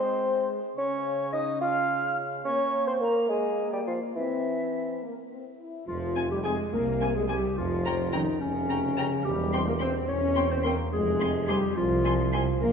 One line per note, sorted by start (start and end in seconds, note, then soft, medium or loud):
0.00 0.60 G#3 medium
0.00 0.48 C4 medium
0.00 0.49 C5 medium
0.00 0.48 C6 medium
0.77 2.41 C#3 medium
0.77 1.29 C#4 medium
0.77 1.29 C#5 medium
0.77 1.35 C#6 medium
1.33 1.61 D#4 medium
1.33 1.45 D#5 medium
1.33 1.61 D#6 medium
1.61 2.16 F4 medium
1.61 2.16 F5 medium
1.61 2.17 F6 medium
2.44 4.12 A#3 medium
2.44 2.89 C#4 medium
2.44 2.84 C#5 medium
2.44 2.84 C#6 medium
2.87 3.02 C4 medium
2.87 2.94 C5 medium
2.87 2.93 C6 medium
3.01 3.30 A#3 medium
3.01 3.29 A#4 medium
3.01 3.29 A#5 medium
3.29 3.72 G#3 medium
3.29 3.71 G#4 medium
3.29 3.71 G#5 medium
3.72 3.79 G3 medium
3.72 3.79 G4 medium
3.72 3.86 G5 medium
3.87 4.00 F3 medium
3.87 4.00 F4 medium
3.87 3.93 F5 medium
4.15 5.00 E3 medium
4.15 4.94 C4 medium
4.15 5.00 E4 medium
4.15 5.00 E5 medium
5.02 5.15 A#3 medium
5.30 5.43 C4 soft
5.60 5.87 E4 medium
5.87 6.59 F1 medium
5.87 6.59 F2 medium
5.87 6.27 F3 medium
5.87 6.27 F4 medium
6.16 6.24 C4 soft
6.16 6.24 G#5 medium
6.30 6.44 G3 medium
6.30 6.36 G3 medium
6.30 6.37 G4 medium
6.43 6.56 G#3 medium
6.43 6.73 G#3 medium
6.43 6.53 C4 soft
6.43 6.57 G#4 medium
6.43 6.52 G#5 medium
6.43 6.53 G#5 medium
6.71 7.43 C2 medium
6.71 7.13 A#3 medium
6.71 7.15 A#3 medium
6.71 7.14 A#4 medium
7.00 7.09 C4 medium
7.00 7.08 G#5 medium
7.00 7.09 G#5 medium
7.14 7.28 G#3 medium
7.14 7.21 G#3 medium
7.14 7.30 G#4 medium
7.27 7.40 G3 medium
7.27 7.57 G3 medium
7.27 7.37 C4 medium
7.27 7.57 G4 medium
7.27 7.37 G#5 medium
7.27 7.37 G#5 soft
7.55 8.27 F1 medium
7.55 8.27 F2 medium
7.55 8.11 F3 medium
7.55 8.13 F3 medium
7.55 8.15 F4 medium
7.85 7.95 C#4 medium
7.85 7.93 G5 medium
7.85 7.93 A#5 medium
8.11 8.40 D#3 medium
8.11 8.21 D#3 medium
8.11 8.22 C#4 medium
8.11 8.40 D#4 medium
8.11 8.21 G5 medium
8.11 8.20 A#5 medium
8.41 9.11 F1 medium
8.41 9.11 F2 medium
8.41 9.23 C#3 medium
8.41 9.24 C#3 medium
8.41 9.23 C#4 medium
8.69 8.77 C#4 soft
8.69 8.78 G5 medium
8.69 8.77 A#5 medium
8.97 9.06 C#4 medium
8.97 9.05 G5 medium
8.97 9.05 A#5 medium
9.24 9.95 E1 medium
9.24 9.95 E2 medium
9.24 9.66 G3 medium
9.24 9.67 G3 medium
9.24 9.66 G4 medium
9.52 9.61 C4 medium
9.52 9.60 G5 medium
9.52 9.61 C6 medium
9.67 9.73 A#3 medium
9.67 9.81 A#3 medium
9.67 9.74 A#4 medium
9.79 10.08 C4 medium
9.79 9.94 C4 medium
9.79 9.89 C4 soft
9.79 9.94 C5 medium
9.79 9.89 G5 medium
9.79 9.87 C6 medium
10.08 10.79 E1 medium
10.08 10.79 E2 medium
10.08 10.50 C#4 medium
10.08 10.51 C#4 medium
10.08 10.50 C#5 medium
10.36 10.45 C4 medium
10.36 10.44 G5 medium
10.36 10.44 C6 medium
10.50 10.64 C4 medium
10.50 10.65 C4 medium
10.50 10.57 C5 medium
10.64 10.92 A#3 medium
10.64 10.73 A#3 medium
10.64 10.74 C4 medium
10.64 10.77 A#4 medium
10.64 10.74 G5 medium
10.64 10.72 C6 medium
10.93 11.63 F1 medium
10.93 11.63 F2 medium
10.93 11.48 G#3 medium
10.93 11.50 G#4 medium
11.20 11.30 C4 medium
11.20 11.28 G#5 medium
11.20 11.28 C6 medium
11.48 11.76 G3 medium
11.48 11.62 G3 medium
11.48 11.57 C4 medium
11.48 11.76 G4 medium
11.48 11.56 G#5 medium
11.48 11.56 C6 medium
11.76 12.46 C2 medium
11.76 12.60 F3 medium
11.76 12.59 F3 medium
11.76 12.31 F4 medium
12.05 12.13 C4 medium
12.05 12.13 G#5 medium
12.05 12.13 C6 medium
12.33 12.41 C4 medium
12.33 12.41 G#5 medium
12.33 12.41 C6 medium
12.59 12.72 A#1 medium
12.59 12.72 A#3 medium
12.59 12.72 A#4 medium